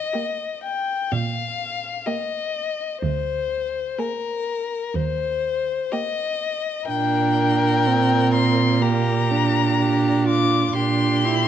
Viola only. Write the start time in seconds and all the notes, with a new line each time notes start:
0.15 A#3
2.07 A#3
3.99 A#3
5.93 A#3
6.89 D4
7.86 C4
8.82 A#3
9.31 D4
10.76 D4
11.24 E4